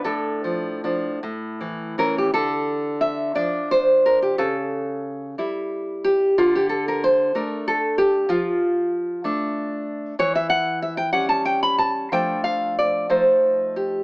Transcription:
\new Staff \with { instrumentName = "Nylon-string guitar" } { \time 6/8 \key d \minor \tempo 4. = 61 << { <d' a'>4. r4 bes'16 g'16 | a'4 e''8 d''8 c''8 bes'16 g'16 | a'2~ a'8 g'8 | f'16 g'16 a'16 bes'16 c''8 bes'8 a'8 g'8 |
f'2~ f'8 r8 | cis''16 e''16 fis''8 e''16 g''16 fis''16 a''16 g''16 b''16 a''8 | g''8 f''8 d''8 c''4 g'8 | } \\ { a,8 f8 <f d'>8 a,8 e8 <e cis'>8 | d4. <f d'>4. | cis4. <g e'>4. | d4. <a d'>4. |
f4. <a d'>4. | e4. <g cis'>4. | <f a d'>4. <f a ees'>4. | } >> }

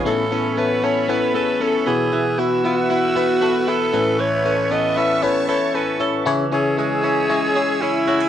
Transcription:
<<
  \new Staff \with { instrumentName = "Analog synth pad" } { \time 4/4 \key a \lydian \tempo 4 = 116 << { <cis'' e'' b''>2.~ <cis'' e'' b''>8 <fis'' e'''>8~ | <fis'' e'''>2.~ <fis'' e'''>8 <a'' cis'''>8~ | <a'' cis'''>1 | <gis'' e'''>1 | } \\ { a'2.~ a'8 b'8~ | b'1~ | b'1 | cis''1 | } >> }
  \new Staff \with { instrumentName = "Alto saxophone" } { \time 4/4 \key a \lydian a'4 b'8 cis''8 b'8 b'8 a'8 gis'8~ | gis'8 fis'8 fis'2 a'4 | cis''4 dis''8 e''8 cis''8 cis''8 b'8 r8 | r8 gis'8 gis'2 e'4 | }
  \new Staff \with { instrumentName = "FM electric piano" } { \time 4/4 \key a \lydian << { <dis' b'>16 r2. r8. | r1 | r1 | r1 | } \\ { <b cis' e' a'>8 <b cis' e' a'>8 <b cis' e' a'>8 <b cis' e' a'>8 <b cis' e' a'>8 <b cis' e' gis'>8 <b cis' e' a'>8 <b e' fis' b'>8~ | <b e' fis' b'>8 <b e' fis' b'>8 <b e' fis' b'>8 <b e' fis' b'>8 <b e' fis' b'>8 <b e' fis' a'>8 <b e' fis' b'>8 <cis' e' a' b'>8~ | <cis' e' a' b'>8 <cis' e' a' b'>8 <cis' e' a' b'>8 <cis' e' a' b'>8 <cis' e' a' b'>8 <cis' e' a' b'>8 <cis' e' a' b'>8 <cis' e' a' cis''>8 | <cis' e' gis' cis''>8 <cis' e' gis' cis''>8 <cis' e' gis' cis''>8 <cis' e' gis' cis''>8 <cis' e' gis' cis''>8 <cis' e' gis' cis''>8 <cis' e' gis' cis''>8 <cis' e' gis' cis''>8 | } >> }
  \new Staff \with { instrumentName = "FM electric piano" } { \clef bass \time 4/4 \key a \lydian a,4. r2 b,8~ | b,4 r2 r8 a,8~ | a,4 r2. | cis4. r2 r8 | }
  \new Staff \with { instrumentName = "Clean electric guitar" } { \time 4/4 \key a \lydian e8 cis'8 b8 cis'8 b8 a'8 cis'8 e8 | e8 e'8 b8 e'8 b8 fis'8 e'8 e8 | e8 cis'8 b8 cis'8 b8 a'8 cis'8 a'8 | e8 cis'8 gis8 cis'8 gis8 gis'8 cis'8 fis'16 gis'16 | }
>>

